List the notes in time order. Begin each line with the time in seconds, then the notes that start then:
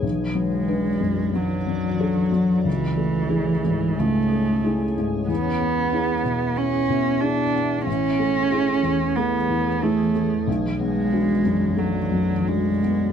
Already playing: E3
0.02 B1 F#4 D5
0.35 F#3 G#3
0.68 D4 B4
1.01 F#2
1.33 F#3
1.67 F#2
2.01 D4 A4
2.32 F#3
2.64 C#2 E3 C#4 G#4 C#5
2.97 A3
3.29 E4 G#4
3.64 G#2
3.98 C#2 A3
4.32 A3
4.64 E4 G#4
4.98 G#2
5.28 E2 B3 E5
5.61 B3
5.92 E4 G#4
6.25 B2
6.57 B3 C#4
6.89 B2
7.20 D4 E4 G#4
7.55 B3
7.85 A1 E3 C#4 G#4 C#5
8.19 A3
8.51 E4 G#4
8.83 E2
9.16 A3 B3
9.49 E2
9.82 A3 E4 G#4
10.15 A3
10.46 B1 F#4 D5
10.80 G#3 B3
11.13 D4 F#4
11.45 F#2
11.77 F#3 A3
12.12 F#2
12.47 G#3 D4 F#4
12.83 B3